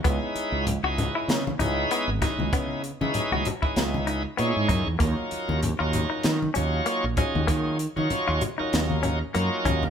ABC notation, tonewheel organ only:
X:1
M:4/4
L:1/16
Q:"Swing 16ths" 1/4=97
K:Ebphr
V:1 name="Tonewheel organ"
[A,DEFc]4 z [A,DEFc]4 z [A,DEFc]3 z [A,DEFc]2- | [A,DEFc]2 z [A,DEFc]3 z [A,DEFc]4 z [A,DEFd]3 z | [G,DE=FB]4 z [G,DEFB]4 z [G,DEFd]3 z [G,DEFA]2- | [G,DE=FA]2 z [G,DEFd]3 z [G,DEFB]4 z [G,DEFB]3 z |]